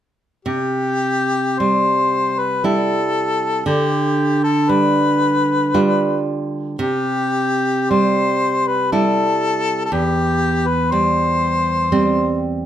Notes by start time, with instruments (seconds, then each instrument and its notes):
0.45 nylon-string guitar C3, harmonica G4
1.59 nylon-string guitar G3, harmonica C5
2.39 harmonica B4
2.64 nylon-string guitar G3 E4, harmonica A4
3.66 nylon-string guitar D3, harmonica G4
4.44 harmonica A4
4.69 nylon-string guitar G3, harmonica B4
5.74 nylon-string guitar G3 F4
6.79 nylon-string guitar C3, harmonica G4
7.91 nylon-string guitar G3, harmonica C5
8.68 harmonica B4
8.92 nylon-string guitar G3 E4, harmonica A4
9.85 harmonica A4
9.92 nylon-string guitar E2, harmonica G4
10.67 harmonica B4
10.92 nylon-string guitar G3, harmonica C5
11.92 nylon-string guitar G3 C4